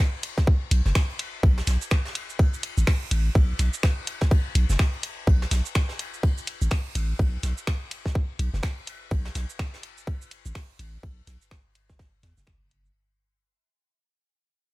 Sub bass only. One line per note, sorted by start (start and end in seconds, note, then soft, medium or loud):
0.71 0.81 B1 medium
0.86 0.93 F#1 loud
1.43 1.62 B1 loud
1.67 1.77 B1 medium
2.78 2.84 A1 medium
3.11 3.30 A1 medium
3.35 3.54 B1 loud
3.59 3.69 B1 medium
4.55 4.65 B1 medium
4.70 4.77 F#1 loud
5.27 5.46 B1 loud
5.51 5.61 B1 medium
6.62 6.69 A1 medium
6.95 7.14 A1 medium
7.19 7.38 B1 loud
7.43 7.53 B1 medium
8.39 8.49 B1 medium
8.54 8.61 F#1 loud
9.11 9.30 B1 loud
9.35 9.45 B1 medium
10.46 10.52 A1 medium
10.79 10.98 A1 medium
11.03 11.22 B1 loud
11.27 11.37 B1 medium
12.23 12.33 E2 medium
12.38 12.91 F#1 loud